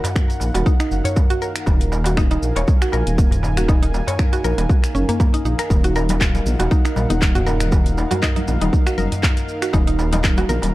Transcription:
Already playing: D#4 A#4 F5 F#5
0.04 closed hi-hat, darbuka tek, darbuka dum, shaker
0.16 finger snap, kick, shaker
0.30 closed hi-hat, shaker
0.40 A#1, darbuka tek, shaker
0.54 D#1 F#4, closed hi-hat, darbuka ka, shaker
0.66 D#4, kick, shaker
0.80 D#4, finger snap, closed hi-hat, shaker
0.91 F#1, shaker
1.04 C#5, closed hi-hat, darbuka dum, shaker
1.16 kick, darbuka ka, shaker
1.30 F#4, closed hi-hat, shaker
1.42 A#4, shaker
1.56 finger snap, closed hi-hat, shaker
1.66 D#1 G#5, kick, darbuka tek, shaker
1.81 closed hi-hat, shaker
1.92 darbuka ka, shaker
2.04 F#4, closed hi-hat, darbuka tek, shaker
2.17 D#4, finger snap, kick, shaker
2.31 D#4, closed hi-hat, darbuka ka, shaker
2.43 A#1, shaker
2.56 D#1 C#5, closed hi-hat, darbuka ka, shaker
2.68 kick, shaker
2.82 F#4, finger snap, closed hi-hat, shaker
2.92 A#1 A#4, darbuka tek, shaker
3.07 D#1, closed hi-hat, shaker
3.18 kick, shaker
3.31 closed hi-hat, darbuka dum, shaker
3.43 darbuka tek, shaker
3.57 F#4, finger snap, closed hi-hat, shaker
3.68 D#4, kick, darbuka tek, shaker
3.83 D#4, closed hi-hat, shaker
3.94 darbuka ka, shaker
4.07 C#5, closed hi-hat, darbuka tek, darbuka dum, shaker
4.19 finger snap, kick, shaker
4.33 F#4, closed hi-hat, darbuka ka, shaker
4.44 A#1 A#4, darbuka tek, shaker
4.58 D#1, closed hi-hat, darbuka ka, shaker
4.69 kick, shaker
4.84 finger snap, closed hi-hat, shaker
4.95 F#1 C#4, shaker
5.09 A#3, closed hi-hat, darbuka dum, shaker
5.20 A#3, kick, darbuka ka, shaker
5.34 D#4, closed hi-hat, shaker
5.45 A#1 D#4, shaker
5.59 A#4, finger snap, closed hi-hat, shaker
5.70 D#1 F#5, kick, darbuka tek, shaker
5.84 F#4, closed hi-hat, shaker
5.96 A#4, darbuka ka, shaker
6.09 closed hi-hat, high conga, darbuka tek, shaker
6.21 finger snap, kick, clap, shaker
6.35 closed hi-hat, darbuka ka, high conga, shaker
6.46 A#1, low conga, shaker
6.59 D#1 F#4, closed hi-hat, darbuka ka, high conga, shaker
6.71 D#4, kick, shaker
6.85 D#4, finger snap, closed hi-hat, shaker
6.96 A#1, high conga, darbuka tek, shaker
7.10 D#1 D#4, closed hi-hat, low conga, shaker
7.22 kick, clap, shaker
7.35 F#4, closed hi-hat, low conga, darbuka dum, shaker
7.47 A#4, darbuka tek, shaker
7.60 finger snap, closed hi-hat, shaker
7.72 kick, darbuka tek, shaker
7.86 closed hi-hat, shaker
7.98 darbuka ka, shaker
8.11 F#4, closed hi-hat, high conga, darbuka tek, darbuka dum, shaker
8.22 D#4, finger snap, kick, clap, shaker
8.36 D#4, closed hi-hat, high conga, shaker
8.48 A#1, darbuka tek, low conga, shaker
8.61 D#1 D#4, closed hi-hat, darbuka ka, high conga, shaker
8.73 kick, high conga, shaker
8.87 F#4, finger snap, closed hi-hat, shaker
8.98 F#1 A#4, high conga, shaker
9.12 closed hi-hat, darbuka dum, shaker
9.23 kick, clap, darbuka ka, shaker
9.37 closed hi-hat, shaker
9.48 shaker
9.62 F#4, finger snap, closed hi-hat, shaker
9.73 D#1 D#4 A#5, kick, darbuka tek, shaker
9.87 D#4, closed hi-hat, shaker
9.99 darbuka ka, shaker
10.13 D#4, closed hi-hat, darbuka tek, high conga, shaker
10.24 finger snap, kick, clap, shaker
10.37 F#4, closed hi-hat, darbuka ka, high conga, shaker
10.49 A#1 A#4, low conga, shaker
10.62 D#1, closed hi-hat, darbuka ka, high conga, shaker

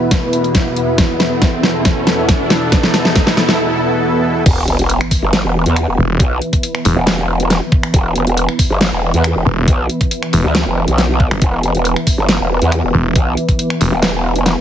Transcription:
Already playing: E2 B2 B3 E4 B4, riser
0.11 kick, snare, closed hi-hat
0.33 closed hi-hat
0.44 closed hi-hat
0.55 kick, snare, closed hi-hat
0.76 closed hi-hat
0.98 A4, kick, snare, closed hi-hat
1.20 snare, closed hi-hat
1.42 kick, snare, closed hi-hat
1.63 snare
1.85 kick, snare, closed hi-hat
2.07 snare, closed hi-hat
2.29 kick, snare, closed hi-hat
2.50 snare, closed hi-hat
2.72 kick, snare, closed hi-hat
2.83 snare
2.94 snare, closed hi-hat
3.05 snare
3.16 kick, snare, closed hi-hat
3.27 snare
3.37 snare
3.49 snare
4.46 E1 E3 B3 B4 E5 B5, kick, closed hi-hat, crash, sub drop
4.68 F1, closed hi-hat
4.79 E1, closed hi-hat
4.89 closed hi-hat
5.01 finger snap
5.11 kick, open hi-hat
5.22 G1
5.33 snare, closed hi-hat
5.44 E1
5.66 E2, closed hi-hat
5.76 finger snap, closed hi-hat
5.88 E1
5.98 E1
6.20 B1, kick, closed hi-hat
6.42 closed hi-hat
6.53 kick, closed hi-hat
6.63 closed hi-hat
6.75 finger snap
6.85 E1, open hi-hat
6.96 E1
7.07 snare, closed hi-hat
7.40 closed hi-hat
7.50 snare, closed hi-hat
7.72 kick
7.83 finger snap
7.94 E1, kick, closed hi-hat
8.16 F1, closed hi-hat
8.27 E1, closed hi-hat
8.37 closed hi-hat
8.49 finger snap
8.59 kick, open hi-hat
8.70 G1
8.81 snare, closed hi-hat
8.92 E1
9.14 E2, closed hi-hat
9.24 finger snap, closed hi-hat
9.36 E1
9.46 E1
9.68 B1, kick, closed hi-hat
9.90 closed hi-hat
10.01 kick, closed hi-hat
10.11 closed hi-hat
10.23 finger snap
10.33 E1, open hi-hat
10.44 D2
10.55 snare, closed hi-hat
10.66 F1
10.88 B1, closed hi-hat
10.98 snare, closed hi-hat
11.20 kick
11.31 G1, finger snap
11.42 E1 D6, kick, closed hi-hat
11.63 F1, closed hi-hat
11.75 E1, closed hi-hat
11.85 closed hi-hat
11.96 finger snap
12.07 kick, open hi-hat
12.18 G1
12.29 snare, closed hi-hat
12.40 E1
12.62 E2, closed hi-hat
12.72 finger snap, closed hi-hat
12.83 E1
12.94 E1
13.16 B1, kick, closed hi-hat
13.37 closed hi-hat
13.49 kick, closed hi-hat
13.59 closed hi-hat
13.70 finger snap
13.81 E1, open hi-hat
13.92 E1
14.03 snare, closed hi-hat
14.36 closed hi-hat
14.46 snare, closed hi-hat

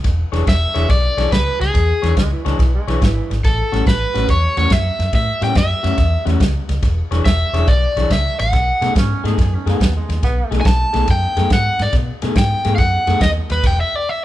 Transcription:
0.04 E1, muted clean electric guitar stroke, kick, snare, ride
0.32 E1 E3 D4 G#4 C#5, snare, ride
0.46 E1 E5, muted clean electric guitar stroke, kick, snare, ride
0.74 E1 E3 D4 G#4 C#5, snare, ride
0.88 B1 D5, muted clean electric guitar stroke, kick, snare, ride
1.17 B1 E3 D4 G#4 C#5, snare, ride
1.31 C#2 B4, muted clean electric guitar stroke, kick, snare, ride
1.60 C#2 G#4, muted clean electric guitar stroke, snare, ride
1.74 E2, muted clean electric guitar stroke, kick, snare, ride
2.02 E2 E3 D4 G#4 C#5, snare, ride
2.16 C#2 G#3, muted clean electric guitar stroke, kick, snare, ride
2.32 E3
2.45 C#2 E3 G#3 D4 G#4 C#5, snare, ride
2.59 B1 E3, muted clean electric guitar stroke, kick, snare, ride
2.74 G#3
2.88 B1 E3 D4 G#4 C#5, snare, ride
3.01 G#1 E3, muted clean electric guitar stroke, kick, snare, ride
3.30 G#1, muted clean electric guitar stroke, snare, ride
3.44 A1 A4, muted clean electric guitar stroke, kick, snare, ride
3.72 A1 A2 G3 C#4 F#4, snare, ride
3.86 A1 B4, muted clean electric guitar stroke, kick, snare, ride
4.14 A1 A2 G3 C#4 F#4, snare, ride
4.28 E2 C#5, muted clean electric guitar stroke, kick, snare, ride
4.57 E2 A2 G3 C#4 F#4 C#5, snare, ride
4.70 F#2 E5, muted clean electric guitar stroke, kick, snare, ride
4.99 F#2, muted clean electric guitar stroke, snare, ride
5.13 A2 E5, muted clean electric guitar stroke, kick, snare, ride
5.41 A2 G3 C#4 F#4 G5, snare, ride
5.55 F#2 E5, muted clean electric guitar stroke, kick, snare, ride
5.83 F#2 A2 G3 C#4 F#4, snare, ride
5.97 E2, muted clean electric guitar stroke, kick, snare, ride
6.25 E2 A2 G3 C#4 F#4, snare, ride
6.40 C#2, muted clean electric guitar stroke, kick, snare, ride
6.69 C#2, muted clean electric guitar stroke, snare, ride
6.83 E1, muted clean electric guitar stroke, kick, snare, ride
7.11 E1 E3 D4 G#4 C#5, snare, ride
7.25 E1 E5, muted clean electric guitar stroke, kick, snare, ride
7.53 E1 E3 D4 G#4 C#5, snare, ride
7.68 B1 D5, muted clean electric guitar stroke, kick, snare, ride
7.96 B1 E3 D4 G#4 C#5, snare, ride
8.10 C#2 E5, muted clean electric guitar stroke, kick, snare, ride
8.39 A1 F#5, muted clean electric guitar stroke, snare, ride
8.53 B1, muted clean electric guitar stroke, kick, snare, ride
8.81 B2 A3 D#4 G#4, snare, ride
8.95 G#2 C#4, muted clean electric guitar stroke, kick, snare, ride
9.24 G#2 B2 A3 D#4 G#4, snare, ride
9.38 F#2, muted clean electric guitar stroke, kick, snare, ride
9.55 C#4
9.66 F#2 B2 A3 B3 D#4 G#4, snare, ride
9.80 D#2, muted clean electric guitar stroke, kick, snare, ride
9.96 G#3
10.09 D#2, muted clean electric guitar stroke, snare, ride
10.22 B1 B3, muted clean electric guitar stroke, kick, snare, ride
10.51 B1 B2 A3 D#4 G#4, snare, ride
10.61 G#5, muted clean electric guitar stroke, ride
10.65 B1 A5, kick, snare
10.93 B1 B2 A3 D#4 G#4, snare, ride
11.07 F#2 G5, muted clean electric guitar stroke, kick, snare, ride
11.37 F#2 B2 A3 D#4 G#4, snare, ride
11.50 G#2 F#5, muted clean electric guitar stroke, kick, snare, ride
11.79 G#2 D5, muted clean electric guitar stroke, snare, ride
11.93 B2, muted clean electric guitar stroke, kick, snare, ride
12.22 B2 A3 D#4 G#4, snare, ride
12.35 G#2 G5, muted clean electric guitar stroke, kick, snare, ride
12.65 G#2 B2 A3 D#4 G#4, snare, ride
12.76 F#2 F5 F#5, muted clean electric guitar stroke, kick, snare, ride
13.07 F#2 B2 A3 D#4 G#4, snare, ride
13.21 D#2 D#5, muted clean electric guitar stroke, kick, snare, ride
13.50 D#2 B4, muted clean electric guitar stroke, snare, ride
13.63 E1 G5, muted clean electric guitar stroke, kick, snare, crash, ride
13.80 E5
13.95 D5
14.09 E5

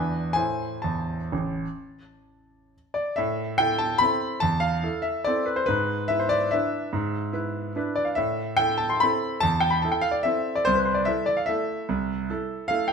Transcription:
Already playing: E2 D4 E4 B4 G#5
0.33 A2 E4 C5 G#5
0.82 E2 A5
1.32 A1
2.94 D5
3.16 A2 E5
3.58 E4 A4 G5
3.78 A5
3.98 C4 E4 A4 B5
4.40 E2 A5
4.60 F5
4.83 E4 A4
5.02 E5
5.24 C4 E4 A4 D5
5.46 B4
5.56 C5
5.66 G#2 B4
6.08 E4 B4 E5
6.19 C5
6.29 D5
6.51 D4 E4 B4 E5
6.93 G#2
7.33 E4 B4
7.76 D4 E4 B4
7.96 D5
8.05 F5
8.15 A2 E5
8.57 E4 A4 G5
8.78 A5
8.90 C6
9.00 C4 E4 A4 B5
9.40 E2 A5
9.60 G5
9.70 B5
9.82 E4 A4 A5
9.92 G5
10.01 F5
10.11 D5
10.23 C4 E4 A4 E5
10.55 D5
10.65 C2 C5
10.75 B4
10.85 C5
10.94 D5
11.05 E4 A4 E5
11.26 D5
11.37 F5
11.46 A3 E4 A4 E5
11.89 C2
12.30 E4 A4
12.68 A3 E4 A4 F5
12.88 G5

